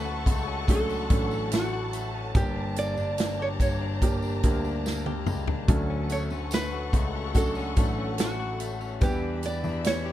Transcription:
Already playing: D2 D3 F#3 A3 C#4 D4 A4 B4 F#5 A5 C#6
0.05 F#4
0.26 C#2 A3, kick, closed hi-hat, tambourine
0.47 C#4
0.68 F#3 A3 C#4 D4 A4, kick, closed hi-hat, tambourine
0.89 C#4, tambourine
1.09 A1 F#3 A3 C#4 D4 A4, kick, closed hi-hat, tambourine
1.31 C#4, tambourine
1.52 A3 F#4, snare, closed hi-hat, tambourine
1.73 F#4
1.93 A3, closed hi-hat, tambourine
2.14 C#4
2.35 G1 G2 A#3 D4 G4 A#5, kick, closed hi-hat, tambourine
2.56 D4
2.76 A#3 D5, closed hi-hat, tambourine
2.97 G1 D4, tambourine
3.18 A#3, snare, closed hi-hat, tambourine
3.39 G4 C#5
3.60 G1 A#3 C#5, kick, closed hi-hat, tambourine
3.81 D4
4.01 G2 A#3 D4 G4, kick, closed hi-hat, tambourine
4.22 D4, tambourine
4.43 D2 A#3 D4 G4, kick, closed hi-hat, tambourine
4.64 D4, tambourine
4.86 A#3, snare, tambourine
5.06 G4, high tom
5.26 C#2 A#3, mid tom, tambourine
5.47 D4, floor tom
5.68 D2 D3 F#3 A3 C#4 D4 A4 F#5 C#6, kick, closed hi-hat, tambourine
5.90 C#4
6.10 A3 C#5, closed hi-hat, tambourine
6.30 D2 C#4, tambourine
6.51 A3 B4, snare, closed hi-hat, tambourine
6.73 F#4
6.93 C#2 A3, kick, closed hi-hat, tambourine
7.15 C#4
7.34 F#3 A3 C#4 D4 F#4 A4, kick, closed hi-hat, tambourine
7.55 C#4, tambourine
7.76 A1 F#3 A3 C#4 D4 A4, kick, closed hi-hat, tambourine
7.98 C#4
8.18 A3 F#4, snare, closed hi-hat, tambourine
8.40 F#4
8.60 A3, closed hi-hat, tambourine
8.81 C#4, tambourine
9.01 E2 E3 G3 B3 D4 E4 G4 B4 E5 B5, kick, closed hi-hat, tambourine
9.22 D4
9.43 B3 D5, closed hi-hat, tambourine
9.64 E2 D4, tambourine
9.84 B3 C#5, snare, closed hi-hat, tambourine
10.06 G4

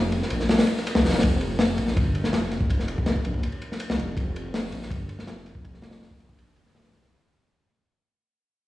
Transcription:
Already playing: F1
0.12 ride
0.22 snare
0.30 A#1, ride
0.40 snare
0.49 snare, open hi-hat
0.58 snare, open hi-hat
0.67 ride
0.77 snare
0.87 ride
0.95 C2, snare
1.04 F1, snare, open hi-hat
1.09 snare, open hi-hat
1.13 snare, open hi-hat
1.18 snare, open hi-hat
1.23 F1, kick, ride
1.41 ride
1.59 snare, open hi-hat
1.78 A#1, ride
1.87 snare
1.97 G1, kick, ride
2.15 ride
2.24 snare
2.33 F1, snare, ride
2.43 snare
2.51 snare, ride
2.61 kick
2.70 kick, ride
2.79 snare
2.88 ride
2.98 kick
3.06 snare, ride
3.16 kick
3.25 A#1, ride
3.34 kick
3.43 ride
3.52 ride
3.62 ride
3.72 snare
3.80 ride
3.90 C2, snare
3.98 F1, snare, ride
4.17 F1, kick, ride
4.36 ride
4.54 snare, open hi-hat
4.72 A#1, ride
4.82 snare
4.90 G1, kick, ride
5.09 ride
5.19 snare
5.27 F1, snare, ride
5.37 snare
5.45 snare, ride
5.55 kick
5.65 kick, ride
5.74 snare
5.82 snare, open hi-hat
5.91 snare, open hi-hat
6.01 snare, open hi-hat
6.11 kick
6.20 A#1, ride
6.29 kick
6.38 ride
6.48 ride
6.56 D#1, ride
6.66 snare
6.75 snare, open hi-hat
6.84 snare, open hi-hat
6.93 C2, snare, open hi-hat
7.03 snare, open hi-hat

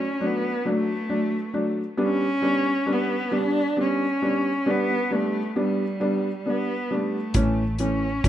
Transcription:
Already playing: C#4
0.20 F#3 A3 D4
0.26 B3
0.65 F#3 A3 D4
0.71 A3
1.09 F#3 A3 D4
1.54 F#3 A3 D4
1.97 G3 B3 D4
2.03 C#4
2.42 G3 B3 D4
2.86 G3 B3 D4
2.93 B3
3.31 G3 B3 D4
3.38 D4
3.77 G3 B3 C#4 D4
4.22 G3 B3 D4
4.66 G3 B3 D4
4.70 B3
5.11 G3 A3 B3 D4
5.56 G3 B3 D4
5.60 G3
6.00 G3 B3 D4
6.46 G3 B3 D4
6.91 G3 A3 B3 D4
7.34 A1 E3 A3 C#4, kick, closed hi-hat
7.79 E3 A3 C#4, closed hi-hat
8.24 A1 E3 A3 C#4, kick, closed hi-hat

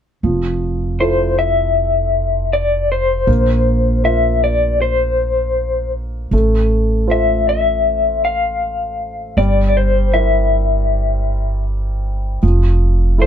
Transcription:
0.23 F1 F3
1.00 E4 F4 A4 C5
1.39 E5
2.53 D5
2.92 C5
3.27 A#1 A#3
4.04 F4 A#4 C5 E5
4.44 D5
4.82 C5
6.31 A1 A3
7.07 F4 A4 C5 E5
7.49 E5
8.25 F5
9.37 G1 G3 D5
9.68 D5
9.77 C5
10.13 E4 A#4 C5 E5
12.42 F1 F3
13.18 E4 F4 A4 C5

